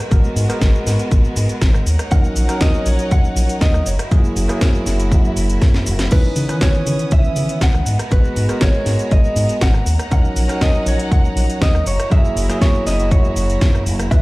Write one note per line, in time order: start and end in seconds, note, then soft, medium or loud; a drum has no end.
0.00 1.84 G#3 medium
0.00 1.84 B3 medium
0.00 1.84 F#4 medium
0.00 6.07 A#4 medium
0.11 0.21 G#1 loud
0.11 0.46 G#3 medium
0.11 0.46 B3 medium
0.11 0.46 F#4 medium
0.11 0.46 A#4 loud
0.11 kick loud
0.11 closed hi-hat medium
0.11 cabasa soft
0.24 cabasa soft
0.36 0.46 G#2 medium
0.36 open hi-hat loud
0.36 cabasa medium
0.48 1.84 G#3 medium
0.48 1.85 B3 medium
0.48 1.85 F#4 medium
0.48 1.85 A#4 loud
0.48 muted fingered electric bass stroke soft
0.48 cross-stick medium
0.48 closed hi-hat medium
0.48 cabasa soft
0.61 0.71 G#1 loud
0.61 kick loud
0.61 snare loud
0.61 closed hi-hat medium
0.61 cabasa soft
0.75 cabasa soft
0.87 0.96 G#2 medium
0.87 snare soft
0.87 open hi-hat loud
0.87 cabasa medium
0.99 closed hi-hat medium
0.99 cabasa soft
1.11 1.21 G#1 medium
1.11 kick loud
1.11 closed hi-hat medium
1.11 cabasa soft
1.24 cabasa soft
1.36 1.46 G#2 medium
1.36 open hi-hat loud
1.36 cabasa medium
1.49 muted fingered electric bass stroke soft
1.49 closed hi-hat medium
1.49 cabasa soft
1.61 1.80 G#1 loud
1.61 kick loud
1.61 snare loud
1.61 closed hi-hat medium
1.61 cabasa soft
1.74 cross-stick medium
1.74 cabasa soft
1.86 1.96 D#2 medium
1.86 3.84 D#4 medium
1.86 3.84 C#5 medium
1.86 3.84 F#5 medium
1.86 open hi-hat loud
1.86 cabasa medium
1.99 cross-stick medium
1.99 closed hi-hat medium
1.99 cabasa soft
2.11 2.21 D#2 loud
2.11 2.46 F#3 medium
2.11 2.46 C#4 medium
2.11 2.46 D#4 medium
2.11 2.46 A#4 loud
2.11 2.61 F#5 loud
2.11 kick loud
2.11 closed hi-hat medium
2.11 cabasa soft
2.24 cabasa soft
2.36 2.46 A#1 medium
2.36 open hi-hat loud
2.36 cabasa medium
2.48 3.84 F#3 medium
2.48 3.85 C#4 medium
2.48 3.85 D#4 medium
2.48 3.85 A#4 loud
2.48 cross-stick medium
2.48 closed hi-hat medium
2.48 cabasa soft
2.61 2.71 D#2 loud
2.61 2.87 D#5 loud
2.61 kick loud
2.61 snare loud
2.61 closed hi-hat medium
2.61 cabasa soft
2.74 cabasa soft
2.86 2.96 A#1 medium
2.86 3.10 C#5 medium
2.86 open hi-hat loud
2.86 cabasa medium
2.99 closed hi-hat medium
2.99 cabasa soft
3.11 3.21 D#2 medium
3.11 3.61 F#5 loud
3.11 kick loud
3.11 closed hi-hat medium
3.11 cabasa soft
3.24 cabasa soft
3.36 3.46 A#1 medium
3.36 open hi-hat loud
3.36 cabasa medium
3.49 closed hi-hat medium
3.49 cabasa soft
3.61 3.80 D#2 loud
3.61 3.87 D#5 medium
3.61 kick loud
3.61 snare loud
3.61 closed hi-hat medium
3.61 cabasa soft
3.74 cross-stick medium
3.74 cabasa soft
3.86 3.96 F#1 medium
3.86 6.09 E4 medium
3.86 6.09 F#4 medium
3.86 3.94 C#5 medium
3.86 open hi-hat loud
3.86 cabasa medium
3.99 cross-stick medium
3.99 closed hi-hat medium
3.99 cabasa soft
4.11 4.21 F#2 loud
4.11 4.46 F#3 medium
4.11 4.46 A#3 medium
4.11 4.46 E4 medium
4.11 4.47 G#4 medium
4.11 kick loud
4.11 closed hi-hat medium
4.11 cabasa soft
4.24 cabasa soft
4.36 4.46 F#1 medium
4.36 open hi-hat loud
4.36 cabasa medium
4.48 6.08 F#3 medium
4.48 6.08 A#3 medium
4.48 6.08 E4 medium
4.48 6.09 G#4 medium
4.48 cross-stick medium
4.48 closed hi-hat medium
4.48 cabasa soft
4.61 4.71 F#2 loud
4.61 kick loud
4.61 snare loud
4.61 closed hi-hat medium
4.61 cabasa soft
4.75 cabasa soft
4.86 5.13 F#1 medium
4.86 snare soft
4.86 open hi-hat loud
4.86 cabasa medium
5.00 closed hi-hat medium
5.00 cabasa soft
5.12 5.30 F#2 medium
5.12 kick loud
5.12 closed hi-hat medium
5.12 cabasa soft
5.25 cabasa soft
5.36 5.55 F#1 medium
5.36 open hi-hat loud
5.36 cabasa medium
5.50 closed hi-hat medium
5.50 cabasa soft
5.62 5.88 F#2 medium
5.62 kick loud
5.62 snare medium
5.62 open hi-hat medium
5.62 cabasa soft
5.74 snare medium
5.74 cabasa soft
5.86 6.05 F#1 loud
5.86 open hi-hat loud
5.86 cabasa medium
5.99 snare medium
5.99 closed hi-hat medium
5.99 cabasa soft
6.11 6.21 C#2 loud
6.11 6.46 E3 medium
6.11 9.83 B3 medium
6.11 7.85 C#4 medium
6.11 6.46 C#4 medium
6.11 6.46 D#4 medium
6.11 6.47 B4 loud
6.11 6.62 B4 loud
6.11 7.85 D#6 medium
6.11 kick loud
6.11 closed hi-hat medium
6.11 crash medium
6.11 cabasa soft
6.24 cabasa soft
6.36 6.46 C#3 medium
6.36 open hi-hat loud
6.36 cabasa medium
6.48 7.85 D#3 medium
6.48 7.84 E3 medium
6.48 7.85 C#4 medium
6.48 7.85 B4 loud
6.48 cross-stick medium
6.48 closed hi-hat medium
6.48 cabasa soft
6.61 6.71 C#2 loud
6.61 7.14 C#5 loud
6.61 kick loud
6.61 snare loud
6.61 closed hi-hat medium
6.61 cabasa soft
6.74 cabasa soft
6.86 6.96 C#3 medium
6.86 open hi-hat loud
6.86 cabasa medium
6.99 closed hi-hat medium
6.99 cabasa soft
7.11 7.21 C#2 medium
7.11 7.63 E5 loud
7.11 kick loud
7.11 closed hi-hat medium
7.11 cabasa soft
7.24 cabasa soft
7.36 7.46 C#3 medium
7.36 open hi-hat loud
7.36 cabasa medium
7.49 closed hi-hat medium
7.49 cabasa soft
7.61 7.80 C#2 loud
7.61 7.98 F#5 loud
7.61 kick loud
7.61 snare loud
7.61 closed hi-hat medium
7.61 cabasa soft
7.74 cross-stick medium
7.74 cabasa soft
7.86 7.96 G#2 medium
7.86 9.84 G#3 medium
7.86 9.84 F#4 medium
7.86 14.07 A#5 medium
7.86 open hi-hat loud
7.86 cabasa medium
7.99 cross-stick medium
7.99 closed hi-hat medium
7.99 cabasa soft
8.11 8.21 G#1 loud
8.11 8.46 G#3 medium
8.11 8.46 B3 medium
8.11 8.46 F#4 medium
8.11 8.46 B4 loud
8.11 8.62 B4 loud
8.11 kick loud
8.11 closed hi-hat medium
8.11 cabasa soft
8.24 cabasa soft
8.36 8.46 G#2 medium
8.36 open hi-hat loud
8.36 cabasa medium
8.48 9.85 G#3 medium
8.48 9.85 B3 medium
8.48 9.85 F#4 medium
8.48 9.86 A#4 medium
8.48 muted fingered electric bass stroke soft
8.48 cross-stick medium
8.48 closed hi-hat medium
8.48 cabasa soft
8.61 8.71 G#1 loud
8.61 9.13 C#5 loud
8.61 kick loud
8.61 snare loud
8.61 closed hi-hat medium
8.61 cabasa soft
8.74 cabasa soft
8.86 8.96 G#2 medium
8.86 snare soft
8.86 open hi-hat loud
8.86 cabasa medium
8.99 closed hi-hat medium
8.99 cabasa soft
9.11 9.21 G#1 medium
9.11 9.59 D#5 loud
9.11 kick loud
9.11 closed hi-hat medium
9.11 cabasa soft
9.24 cabasa soft
9.36 9.46 G#2 medium
9.36 open hi-hat loud
9.36 cabasa medium
9.49 muted fingered electric bass stroke soft
9.49 closed hi-hat medium
9.49 cabasa soft
9.61 9.80 G#1 loud
9.61 9.97 F#5 loud
9.61 kick loud
9.61 snare loud
9.61 closed hi-hat medium
9.61 cabasa soft
9.74 cross-stick medium
9.74 cabasa soft
9.86 9.96 D#2 medium
9.86 11.84 D#4 medium
9.86 11.84 C#5 medium
9.86 11.84 F#5 medium
9.86 open hi-hat loud
9.86 cabasa medium
9.99 cross-stick medium
9.99 closed hi-hat medium
9.99 cabasa soft
10.11 10.21 D#2 loud
10.11 10.46 F#3 medium
10.11 10.46 C#4 medium
10.11 10.46 D#4 medium
10.11 10.46 A#4 loud
10.11 10.62 F#5 loud
10.11 kick loud
10.11 closed hi-hat medium
10.11 cabasa soft
10.25 cabasa soft
10.36 10.46 A#1 medium
10.36 open hi-hat loud
10.36 cabasa medium
10.48 11.84 F#3 medium
10.48 11.85 C#4 medium
10.48 11.85 D#4 medium
10.48 11.85 A#4 loud
10.48 cross-stick medium
10.48 closed hi-hat medium
10.48 cabasa soft
10.61 10.71 D#2 loud
10.61 10.85 D#5 loud
10.61 kick loud
10.61 snare loud
10.61 closed hi-hat medium
10.61 cabasa soft
10.74 cabasa soft
10.86 10.96 A#1 medium
10.86 11.13 C#5 medium
10.86 open hi-hat loud
10.86 cabasa medium
10.99 closed hi-hat medium
10.99 cabasa soft
11.11 11.21 D#2 medium
11.11 11.62 F#5 loud
11.11 kick loud
11.11 closed hi-hat soft
11.11 cabasa soft
11.25 cabasa soft
11.36 11.46 A#1 medium
11.36 open hi-hat loud
11.36 cabasa medium
11.50 closed hi-hat medium
11.50 cabasa soft
11.62 11.80 D#2 loud
11.62 11.87 D#5 loud
11.62 kick loud
11.62 snare loud
11.62 closed hi-hat medium
11.62 cabasa soft
11.75 cross-stick medium
11.75 cabasa soft
11.86 11.96 F#1 medium
11.86 14.10 E4 medium
11.86 14.09 F#4 medium
11.86 12.12 C#5 medium
11.86 open hi-hat loud
11.86 cabasa medium
12.00 cross-stick medium
12.00 closed hi-hat medium
12.00 cabasa soft
12.10 12.21 F#2 loud
12.10 12.46 F#3 medium
12.10 12.46 A#3 medium
12.10 12.46 E4 medium
12.10 12.46 G#4 loud
12.10 12.58 E5 loud
12.10 kick loud
12.10 closed hi-hat soft
12.10 cabasa soft
12.25 cabasa soft
12.36 12.46 F#1 medium
12.36 open hi-hat loud
12.36 cabasa medium
12.49 14.08 F#3 medium
12.49 14.08 A#3 medium
12.49 14.09 E4 medium
12.49 14.09 G#4 loud
12.49 muted fingered electric bass stroke soft
12.49 cross-stick medium
12.49 closed hi-hat medium
12.49 cabasa soft
12.61 12.71 F#2 loud
12.61 12.86 C#5 medium
12.61 kick loud
12.61 snare loud
12.61 closed hi-hat medium
12.61 cabasa soft
12.74 cabasa soft
12.86 13.13 F#1 medium
12.86 13.11 D#5 medium
12.86 snare soft
12.86 open hi-hat loud
12.86 cabasa medium
13.00 closed hi-hat medium
13.00 cabasa soft
13.11 13.30 F#2 medium
13.11 13.83 C#5 medium
13.11 kick loud
13.11 closed hi-hat soft
13.11 cabasa soft
13.24 cabasa soft
13.36 13.55 F#1 medium
13.36 open hi-hat loud
13.36 cabasa medium
13.50 closed hi-hat medium
13.50 cabasa soft
13.61 13.88 F#2 medium
13.61 kick loud
13.61 snare loud
13.61 closed hi-hat soft
13.61 cabasa soft
13.75 cross-stick medium
13.75 cabasa soft
13.86 14.05 F#1 loud
13.86 open hi-hat loud
13.86 cabasa medium
13.99 cross-stick medium
13.99 closed hi-hat medium
13.99 cabasa soft
14.11 14.21 C#2 loud
14.11 14.22 D#3 medium
14.11 14.22 E3 medium
14.11 14.22 B3 medium
14.11 14.22 C#4 medium
14.11 14.22 B4 loud
14.11 14.22 E5 loud
14.11 14.22 D#6 medium
14.11 kick loud
14.11 closed hi-hat soft
14.11 cabasa soft